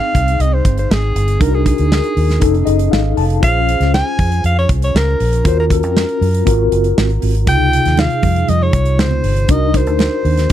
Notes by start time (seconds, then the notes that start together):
Already playing: C4 D#4 G#4 F5 G5
0.15 C2, kick, closed hi-hat
0.28 closed hi-hat
0.40 C2 D#5, closed hi-hat
0.54 C5
0.65 G1, kick, closed hi-hat
0.78 C5, closed hi-hat
0.90 G#1 G#4, snare
1.16 G1, closed hi-hat
1.28 closed hi-hat
1.39 C2 D4 D#4 F#4 A#4, kick, closed hi-hat
1.54 G#4
1.66 G#4, kick, closed hi-hat
1.78 D2, closed hi-hat
1.92 snare
2.04 closed hi-hat
2.17 D#2, open hi-hat
2.30 snare, closed hi-hat
2.40 F1 C#4 D#4 G#4 A4, kick, closed hi-hat
2.54 closed hi-hat
2.66 F#1 D#5, closed hi-hat
2.79 closed hi-hat
2.91 G#1 F5, snare
3.17 F1 A5, open hi-hat
3.30 closed hi-hat
3.40 A#1 C#4 F4 G#4 F5, kick, closed hi-hat
3.69 closed hi-hat
3.80 C#2, snare, closed hi-hat
3.94 G#5, snare
4.19 F2, kick, open hi-hat
4.32 closed hi-hat
4.44 F2 F5, closed hi-hat
4.59 C#5
4.69 C2, kick, closed hi-hat
4.82 C#5, closed hi-hat
4.95 C#2 A#4, snare
5.20 A#1, open hi-hat
5.33 closed hi-hat
5.44 D#2 C#4 F4 F#4 A#4 C5, kick, closed hi-hat
5.60 A#4
5.70 A#4, kick, closed hi-hat
5.83 F2, closed hi-hat
5.97 snare
6.09 closed hi-hat
6.21 F#2, open hi-hat
6.34 closed hi-hat
6.45 G#1 C4 F4 F#4 A#4, kick, closed hi-hat
6.72 F#1, closed hi-hat
6.84 closed hi-hat
6.98 G#1, snare
7.10 closed hi-hat
7.22 G#1, open hi-hat
7.35 closed hi-hat
7.46 C#2 C3 D#4 F4 G#4 G5, kick, closed hi-hat, muted conga
7.73 closed hi-hat
7.85 D#2, snare, closed hi-hat
7.97 F5, snare, high conga
8.11 closed hi-hat
8.23 F2, kick, open hi-hat, low conga
8.36 closed hi-hat
8.48 F2 D#5, closed hi-hat, muted conga, low conga
8.62 C#5
8.73 C2, kick, closed hi-hat, muted conga
8.86 closed hi-hat
8.98 C#2 C5, snare, high conga
9.11 high conga
9.24 G1, open hi-hat
9.36 closed hi-hat
9.48 C2 D4 D#4 F#4 A#4 D#5, kick, closed hi-hat, muted conga
9.74 C5, kick, closed hi-hat
9.87 D2, closed hi-hat
9.99 snare, high conga
10.25 D#2, open hi-hat
10.37 snare, closed hi-hat
10.49 C4, closed hi-hat